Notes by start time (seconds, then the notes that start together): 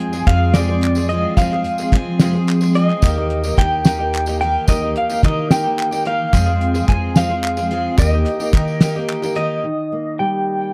Already playing: F2 F3 G#3 C4 G#4 G#5
0.12 F3 G#3 C4 G#4, clap, tambourine
0.27 F2 F3 G#3 C4 G#4 F5, kick, clap, closed hi-hat
0.54 F2 C3 F3 G#3 C4 G#4 D5, snare, closed hi-hat, tambourine
0.69 F3 G#3 C4 G#4
0.81 clap, closed hi-hat
0.95 C4 G#4, clap, tambourine
0.99 F3 G#3
1.09 F3 G#3 C4 D#5, closed hi-hat
1.14 G#4
1.37 F2 C3 F3 G#3 C4 G#4 F5, kick, clap, closed hi-hat, tambourine
1.53 F3 G#3 C4 G#4, clap
1.64 closed hi-hat, tambourine
1.78 G#3 C4 G#4, clap, tambourine
1.83 F3
1.92 F3 G#3 C4 G#4, kick, clap, closed hi-hat
2.19 F2 C3 F3 G#3 C4 G#4, snare, closed hi-hat, tambourine
2.33 F3 G#3 C4 G#4, tambourine
2.47 clap, closed hi-hat, tambourine
2.61 F3 G#3 C4 G#4, clap, tambourine
2.74 F3 G#3 C4 G#4 D#5, closed hi-hat, tambourine
2.90 clap
3.02 D#2 D#3 A#3 D#4 G4, kick, clap, closed hi-hat, tambourine
3.16 A#3 D#4 G4
3.30 closed hi-hat
3.44 A#3 D#4 G4, clap, tambourine
3.57 D#2 D#3 A#3 D#4 G4 G5, kick, clap, closed hi-hat
3.85 D#3 A#3 D#4 G4, snare, closed hi-hat, tambourine
3.98 A#3 D#4 G4
4.13 clap, closed hi-hat
4.26 A#3 D#4 G4, clap, tambourine
4.41 D#3 A#3 D#4 G4 G5, closed hi-hat
4.67 D#2 D#3 A#3 D#4 G4 D#5, kick, clap, closed hi-hat, tambourine
4.82 A#3 D#4 G4
4.96 F5, closed hi-hat
5.10 A#3 D#4 G4, clap, tambourine
5.23 D#3 A#3 D#4 G4 D#5, kick, clap, closed hi-hat
5.51 D#3 A#3 D#4 G4 G5, snare, closed hi-hat, tambourine
5.64 A#3 D#4 G4
5.79 clap, closed hi-hat
5.91 A#3 D#4 G4, clap, tambourine
6.05 D#3 A#3 D#4 G4 F5, closed hi-hat
6.33 F2 C3 F3 G#3 C4 G#4, kick, clap, closed hi-hat, tambourine
6.46 F3 G#3 C4 G#4
6.61 closed hi-hat
6.74 F3 G#3 C4 G#4, clap, tambourine
6.88 F2 F3 G#3 C4 G#4 G#5, kick, clap, closed hi-hat
7.16 F2 C3 F3 G#3 C4 G#4 F5, snare, closed hi-hat, tambourine
7.29 F3 G#3 C4 G#4
7.44 clap, closed hi-hat
7.57 F3 G#3 C4 G#4, clap, tambourine
7.71 F3 G#3 C4 G#4, closed hi-hat
7.98 D#2 D#3 A#3 D#4 G4 D#5, kick, clap, closed hi-hat, tambourine
8.13 A#3 D#4 G4
8.26 clap, closed hi-hat, tambourine
8.39 A#3 D#4 G4, tambourine
8.53 D#3 A#3 D#4 G4, kick, clap, closed hi-hat
8.68 tambourine
8.80 D#3 A#3 D#4 G4, snare, closed hi-hat, tambourine
8.95 A#3 D#4 G4, tambourine
9.09 clap, closed hi-hat, tambourine
9.22 A#3 D#4 G4, clap, tambourine
9.35 D#3 A#3 D#4 G4 D#5, clap, closed hi-hat
9.64 D#3
9.92 A#3
10.19 G3 G5